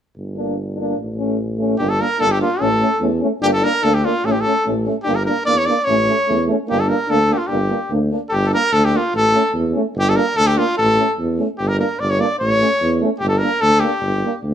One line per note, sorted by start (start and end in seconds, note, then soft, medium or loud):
0.16 0.95 G1 soft
0.35 0.56 A#3 soft
0.35 0.55 D4 soft
0.77 0.96 A#3 soft
0.77 0.96 D4 medium
0.97 1.77 A1 medium
1.17 1.37 A3 medium
1.17 1.37 C#4 soft
1.58 1.78 A3 medium
1.58 1.78 C#4 medium
1.78 2.02 G1 medium
1.78 1.88 A#3 medium
1.78 1.86 D4 medium
1.78 1.91 G4 medium
1.90 2.03 A4 medium
1.99 2.07 A#3 medium
1.99 2.07 D4 soft
1.99 2.22 A#4 medium
2.18 2.42 G1 medium
2.18 2.27 A#3 medium
2.18 2.27 D4 medium
2.18 2.33 A4 loud
2.32 2.40 G4 medium
2.40 2.49 A#3 medium
2.40 2.48 D4 medium
2.40 2.63 F4 medium
2.60 2.82 A1 medium
2.60 2.69 A3 medium
2.60 2.68 C#4 medium
2.60 3.01 A4 medium
2.80 2.89 A3 medium
2.80 2.88 C#4 medium
3.01 3.23 E2 medium
3.01 3.09 A3 medium
3.01 3.09 C#4 medium
3.20 3.30 A3 medium
3.20 3.28 C#4 medium
3.41 3.63 G1 medium
3.41 3.51 A#3 medium
3.41 3.51 D4 medium
3.41 3.46 G4 medium
3.46 3.48 G4 medium
3.53 3.65 A4 medium
3.62 3.71 A#3 medium
3.62 3.70 D4 medium
3.62 3.85 A#4 medium
3.83 4.05 D2 medium
3.83 3.91 A#3 medium
3.83 3.91 D4 medium
3.83 3.96 A4 medium
3.95 4.06 G4 medium
4.03 4.13 A#3 medium
4.03 4.11 D4 medium
4.03 4.27 F4 medium
4.24 4.46 A1 medium
4.24 4.33 A3 medium
4.24 4.33 C#4 medium
4.24 4.33 A4 medium
4.32 4.42 G4 medium
4.41 4.66 A4 medium
4.45 4.54 A3 medium
4.45 4.53 C#4 medium
4.66 4.88 A1 medium
4.66 4.74 A3 soft
4.66 4.74 C#4 soft
4.85 4.95 A3 medium
4.85 4.93 C#4 soft
5.03 5.29 G1 medium
5.03 5.14 A#3 medium
5.03 5.13 D4 medium
5.03 5.17 G4 medium
5.16 5.25 A#4 medium
5.26 5.35 A#3 soft
5.26 5.35 D4 medium
5.26 5.45 A#4 medium
5.46 5.70 E2 medium
5.46 5.54 A#3 medium
5.46 5.55 D4 soft
5.46 5.60 D5 loud
5.58 5.67 C#5 medium
5.66 5.76 A#3 medium
5.66 5.74 D4 medium
5.66 5.86 D5 medium
5.85 6.10 A1 medium
5.85 5.96 A3 medium
5.85 5.95 C#4 medium
5.85 6.47 C#5 medium
6.07 6.15 A3 medium
6.07 6.15 C#4 medium
6.28 6.52 E2 medium
6.28 6.36 A3 medium
6.28 6.36 C#4 soft
6.47 6.56 A3 medium
6.47 6.57 C#4 medium
6.68 6.93 G1 medium
6.68 6.76 A#3 medium
6.68 6.77 D4 medium
6.68 6.81 G4 medium
6.80 6.90 A4 medium
6.88 6.96 A#3 medium
6.88 6.96 D4 medium
6.88 7.12 A#4 medium
7.08 7.33 D2 medium
7.08 7.17 A#3 medium
7.08 7.17 D4 medium
7.08 7.35 A4 medium
7.29 7.38 A#3 medium
7.29 7.37 D4 medium
7.29 7.39 G4 medium
7.38 7.48 F4 medium
7.47 7.72 G1 medium
7.47 7.59 A#3 medium
7.47 7.58 D4 medium
7.47 7.92 G4 medium
7.70 7.78 A#3 soft
7.70 7.78 D4 medium
7.91 8.13 D2 medium
7.91 7.99 A#3 soft
7.91 8.00 D4 soft
8.11 8.19 A#3 medium
8.11 8.19 D4 soft
8.29 8.54 G1 medium
8.29 8.47 G4 medium
8.29 8.34 A4 medium
8.46 8.53 A4 medium
8.51 8.61 A#3 medium
8.51 8.59 D4 medium
8.51 8.74 A#4 medium
8.73 8.95 D2 medium
8.73 8.86 A4 loud
8.85 8.98 G4 medium
8.91 9.02 A#3 medium
8.91 9.00 D4 medium
8.97 9.15 F4 medium
9.14 9.36 A1 medium
9.14 9.53 A4 medium
9.33 9.42 A3 medium
9.33 9.42 C#4 medium
9.54 9.76 E2 medium
9.73 9.84 A3 medium
9.73 9.81 C#4 medium
9.95 10.17 G1 loud
9.99 10.11 G4 loud
10.09 10.18 A4 medium
10.14 10.25 A#3 medium
10.14 10.23 D4 medium
10.14 10.38 A#4 medium
10.37 10.59 D2 medium
10.37 10.48 A4 loud
10.47 10.60 G4 medium
10.57 10.65 A#3 medium
10.57 10.65 D4 medium
10.57 10.77 F4 medium
10.78 11.00 A1 medium
10.78 11.15 A4 medium
10.97 11.06 A3 medium
10.97 11.05 C#4 medium
11.19 11.41 E2 medium
11.38 11.47 A3 medium
11.38 11.46 C#4 medium
11.58 11.82 G1 medium
11.58 11.69 G4 medium
11.68 11.78 A#4 medium
11.78 11.86 A#3 medium
11.78 11.87 D4 medium
11.78 12.01 A#4 medium
11.99 12.22 G1 medium
11.99 12.12 D5 medium
12.10 12.22 C#5 medium
12.18 12.26 A#3 medium
12.18 12.27 D4 medium
12.18 12.38 D5 medium
12.39 12.63 A1 medium
12.39 12.96 C#5 medium
12.60 12.69 A3 medium
12.60 12.68 C#4 medium
12.81 13.04 E2 medium
13.01 13.09 A3 medium
13.01 13.09 C#4 medium
13.19 13.44 G1 medium
13.19 13.28 G4 medium
13.28 13.39 A4 medium
13.38 13.62 A#4 medium
13.42 13.50 A#3 medium
13.42 13.50 D4 medium
13.61 13.84 D2 medium
13.61 13.81 A4 loud
13.80 13.89 A#3 medium
13.80 14.42 G4 medium
13.84 13.92 D4 medium
14.01 14.24 G1 medium
14.23 14.33 A#3 medium
14.23 14.31 D4 medium
14.43 14.54 D2 medium